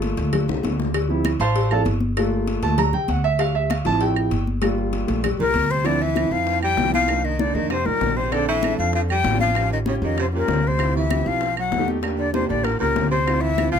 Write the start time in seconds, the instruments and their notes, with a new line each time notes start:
Already playing: upright bass G1, grand piano A3 A#3 F4
0.02 cowbell, high conga
0.17 upright bass D2, cowbell, high conga
0.33 cowbell, high conga, low conga, claves
0.48 upright bass C2, high bongo, high conga
0.63 upright bass D2, cowbell, high bongo, high conga
0.79 low bongo, high conga
0.94 cowbell, high conga, claves
1.09 grand piano F3 C4 E4, high conga
1.25 cowbell, high conga, claves
1.40 upright bass A1, grand piano C5 F5 A5 C6, cowbell, high conga
1.55 cowbell, high conga
1.70 grand piano F3 C4 E4 A4 D5 F5 A5, high conga, claves
1.85 upright bass G1, cowbell, high conga
2.00 high conga
2.17 grand piano A3 A#3 F4, cowbell, claves
2.32 high conga
2.47 cowbell, high conga
2.62 upright bass D2, grand piano A3 A#3 F4 A5, cowbell, high conga
2.78 grand piano A#5, cowbell, high conga, low conga, claves
2.93 upright bass C2, grand piano G5, high conga, low conga
3.08 upright bass D2, grand piano F#5, cowbell, high conga
3.24 grand piano E5, high conga
3.39 grand piano F5, cowbell, high conga, claves
3.55 grand piano E5, high conga
3.70 grand piano F5, cowbell, high conga, claves
3.85 upright bass A1, grand piano F3 C4 E4 A5, cowbell, high conga
4.01 grand piano G5, cowbell, high conga
4.16 high conga, claves
4.31 upright bass G1, cowbell, high conga
4.47 high conga
4.62 grand piano G3 A#3 F4, cowbell, high conga, claves
4.78 high conga
4.93 cowbell, high conga
5.07 upright bass A#1, grand piano A3 A#3 F4, cowbell, high conga
5.24 cowbell, high conga, low conga, claves
5.39 upright bass C2, baritone saxophone A#2, flute A#4, high conga, low conga
5.54 upright bass D2, cowbell, high conga
5.70 baritone saxophone C3, flute C5, high conga
5.84 baritone saxophone D3, grand piano F3 C4 E4, flute D5, high bongo, high conga, claves
6.01 baritone saxophone E3, flute E5, high conga
6.14 grand piano F3 C4 E4, high bongo, high conga, claves
6.31 upright bass F2, baritone saxophone F3, flute F5, high conga
6.47 high bongo, high conga
6.62 baritone saxophone G3, flute G5, high conga, claves
6.77 upright bass C2, high bongo, low bongo, high conga
6.84 grand piano F3 C4 E4
6.94 baritone saxophone F3, flute F5, high conga
7.08 grand piano A#3 D4 D#4, high bongo, claves
7.24 baritone saxophone D#3, flute D#5, high bongo, high conga
7.39 baritone saxophone D3, grand piano A#3 D4 D#4, flute D5, high bongo, high conga
7.54 upright bass F2, baritone saxophone D#3, grand piano A#3 D4 D#4, flute D#5, high bongo, high conga
7.70 baritone saxophone C3, flute C5, high bongo, high conga, claves
7.85 upright bass C2, baritone saxophone A#2, grand piano G3 D#4 G4, flute A#4, high bongo, high conga
8.01 upright bass A#1, high bongo, low bongo, high conga
8.16 baritone saxophone C3, flute C5
8.31 baritone saxophone D3, grand piano C4 D4 A4, flute D5, high bongo, high conga, claves
8.47 baritone saxophone E3, flute E5, high conga
8.63 grand piano C4 D4 A4, high bongo, high conga, claves
8.78 upright bass F2, baritone saxophone F3, flute F5, high conga
8.93 baritone saxophone F3, flute F5, high bongo, high conga
9.09 baritone saxophone G3, flute G5, high conga, claves
9.24 upright bass A1, high bongo, low bongo, high conga
9.32 grand piano C4 D4 F4
9.39 baritone saxophone F3, flute F5, high conga
9.55 grand piano C#4 F4 G4, high bongo, high conga, claves
9.70 baritone saxophone D#3, flute D#5, high bongo, high conga
9.86 baritone saxophone C#3, grand piano C#4 F4 G4, flute C#5, high bongo, high conga
10.02 upright bass F2, baritone saxophone D#3, grand piano C#4 F4 G4, flute D#5, high bongo, high conga
10.18 baritone saxophone C3, flute C5, high bongo, high conga, claves
10.32 baritone saxophone A#2, grand piano C#4 F4 G4, high bongo, high conga
10.37 flute A#4
10.48 upright bass D2, high bongo, low bongo, high conga
10.66 baritone saxophone C3, flute C5
10.79 grand piano C4 E4 F4 G4, high bongo, high conga, claves
10.95 baritone saxophone E3, flute E5, high conga
11.09 grand piano C4 E4 F4 G4, high bongo, high conga, claves
11.26 upright bass B1, baritone saxophone F3, flute F5, high conga
11.41 high bongo, high conga
11.57 baritone saxophone F#3, flute F#5, high conga, claves
11.72 upright bass E2, high bongo, low bongo, high conga
11.79 grand piano A3 D#4 G4
11.88 high conga
12.02 grand piano A#3 D4 G4, high bongo, high conga, claves
12.18 baritone saxophone D3, flute D5, high bongo, high conga
12.33 baritone saxophone C3, grand piano A#3 D4 G4, flute C5, high bongo, high conga
12.49 upright bass A1, baritone saxophone D3, grand piano A#3 D4 G4, flute D5, high bongo, high conga
12.64 baritone saxophone A#2, flute A#4, high bongo, high conga, claves
12.79 upright bass C#2, baritone saxophone A#2, grand piano A#3 C#4 G4, flute A#4, high bongo, high conga
12.96 upright bass D2, high bongo, low bongo, high conga
13.11 baritone saxophone C3, flute C5
13.26 grand piano C4 E4 F4, high bongo, high conga, claves
13.41 baritone saxophone E3, flute E5, high conga
13.58 grand piano C4 E4 F4, high bongo, high conga, claves
13.71 upright bass B1, baritone saxophone F3, flute F5, high conga